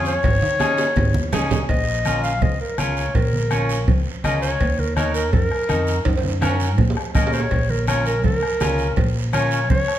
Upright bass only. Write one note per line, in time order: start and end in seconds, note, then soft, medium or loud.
0.00 0.16 F2 medium
0.24 0.38 G#1 loud
0.97 1.11 G#1 loud
1.15 1.30 D#2 medium
1.33 1.62 C#2 medium
1.69 2.42 A#1 medium
2.42 2.57 C#2 medium
2.79 3.08 C#2 medium
3.15 3.88 A#1 loud
3.88 4.02 C#2 medium
4.24 4.53 C#2 medium
4.61 5.33 D#2 loud
5.33 5.48 F#2 medium
5.69 5.98 F2 medium
6.06 6.78 F#2 medium
6.78 6.93 A#2 medium
7.15 7.44 A#2 medium
7.51 8.24 A#1 medium
8.24 8.39 C#2 medium
8.61 8.90 C#2 medium
8.97 9.70 A#1 medium
9.70 9.85 C#2 medium